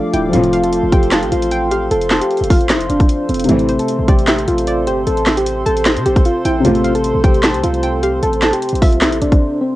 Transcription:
Already playing: F3 A3 D4 F4 A4 D5 F5 D6
0.13 D1 E4 G5, closed hi-hat
0.29 F3 A3
0.33 F1 A2 C3 F3 C4 F4 A4 C5 C6, closed hi-hat
0.38 F4
0.44 closed hi-hat
0.53 F5, closed hi-hat
0.63 A4, closed hi-hat
0.73 closed hi-hat
0.83 F1
0.92 G4 G5, kick, closed hi-hat
1.03 closed hi-hat
1.12 A5, snare, clap, closed hi-hat
1.23 A1, closed hi-hat
1.32 A1 F4, closed hi-hat
1.42 closed hi-hat
1.51 G5, closed hi-hat
1.71 G4 F5, closed hi-hat
1.91 F1 A4, closed hi-hat
2.01 closed hi-hat
2.10 A5, snare, clap, closed hi-hat
2.21 G4, closed hi-hat
2.31 closed hi-hat
2.37 F1, closed hi-hat
2.44 closed hi-hat
2.50 F4 F5, kick, open hi-hat
2.61 A1, closed hi-hat
2.69 E4, snare, clap, closed hi-hat
2.75 F1
2.81 closed hi-hat
2.90 F1 D4, closed hi-hat
3.00 kick, closed hi-hat
3.09 closed hi-hat
3.29 F1 C4, closed hi-hat
3.34 closed hi-hat
3.40 closed hi-hat
3.44 C3 A3, closed hi-hat
3.49 A1 A2 C3 E3 C4 E4 C6, closed hi-hat
3.54 E5
3.59 closed hi-hat
3.69 C5, closed hi-hat
3.79 A4, closed hi-hat
3.88 closed hi-hat
3.99 A1
4.08 G4 D5, kick, closed hi-hat
4.19 closed hi-hat
4.27 E5, snare, clap, closed hi-hat
4.39 closed hi-hat
4.48 A1 F4, closed hi-hat
4.58 closed hi-hat
4.67 D5, closed hi-hat
4.87 G1 G4 C5, closed hi-hat
5.07 A1 A4, closed hi-hat
5.17 closed hi-hat
5.26 E5, snare, clap, closed hi-hat
5.37 G4, closed hi-hat
5.46 closed hi-hat
5.66 A1 A4 A5, closed hi-hat
5.77 closed hi-hat
5.85 snare, clap, closed hi-hat
5.96 C3, closed hi-hat
6.06 A1 G4, closed hi-hat
6.16 kick, closed hi-hat
6.25 F4, closed hi-hat
6.45 A1 E4 G5, closed hi-hat
6.60 C3 A3
6.65 A1 E2 A2 C3 C4 F4, closed hi-hat
6.75 closed hi-hat
6.84 F5, closed hi-hat
6.95 A4, closed hi-hat
7.04 closed hi-hat
7.15 A1
7.24 G4 G5, kick, closed hi-hat
7.35 closed hi-hat
7.43 A5, snare, clap, closed hi-hat
7.54 C2, closed hi-hat
7.63 C2 F4, closed hi-hat
7.74 closed hi-hat
7.83 G5, closed hi-hat
8.03 G4 F5, closed hi-hat
8.23 A1 A4, closed hi-hat
8.33 closed hi-hat
8.42 A5, snare, clap, closed hi-hat
8.53 G4, closed hi-hat
8.62 closed hi-hat
8.69 A1, closed hi-hat
8.75 closed hi-hat
8.82 F4 E5, kick, open hi-hat
8.92 C2, closed hi-hat
9.01 E4, snare, clap, closed hi-hat
9.07 A1
9.12 closed hi-hat
9.21 A1 D4, closed hi-hat
9.32 kick, closed hi-hat
9.61 C4

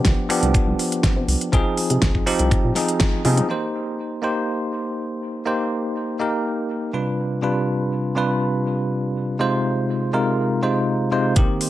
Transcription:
Already playing: F3 B3 D4 G4
0.05 C2, kick, snare, closed hi-hat
0.29 F3 B3 D4 G4, finger snap, open hi-hat
0.42 C2, closed hi-hat
0.54 C2, finger snap, kick, closed hi-hat
0.67 C2
0.79 open hi-hat
0.92 closed hi-hat
1.03 kick, snare, closed hi-hat
1.16 C3
1.28 C2, open hi-hat
1.41 closed hi-hat
1.52 C2 F3 C4 D#4 G#4, kick, closed hi-hat
1.77 open hi-hat
1.90 C3, closed hi-hat
2.02 C2, kick, snare, closed hi-hat
2.15 kick
2.26 C2 F3 C4 D#4 G4, open hi-hat
2.39 C2, closed hi-hat
2.51 finger snap, kick, closed hi-hat
2.64 A#2
2.75 F3 C4 D#4 G#4, snare, open hi-hat
2.88 closed hi-hat
3.00 kick, snare, closed hi-hat
3.25 C3 F3 C4 D#4 G#4, open hi-hat, high tom
3.37 closed hi-hat, mid tom
3.49 A#3 D#4 G4 C5
4.22 A#3 D#4 G4 C5
5.45 A#3 D#4 G4 C5
6.19 A#3 D#4 G4 A#4
6.93 C3 G3 D4 F4 B4
7.42 C3 G3 D4 F4 B4
8.15 C3 G3 D4 F4 B4
9.39 C3 G#3 D#4 F4 C5
10.13 C3 G#3 D#4 F4 A#4
10.62 C3 G#3 D#4 F4 C5
11.11 C3 G#3 D#4 F4 C5
11.36 C2 D#3 A#3 C4 G4, kick, closed hi-hat
11.61 open hi-hat

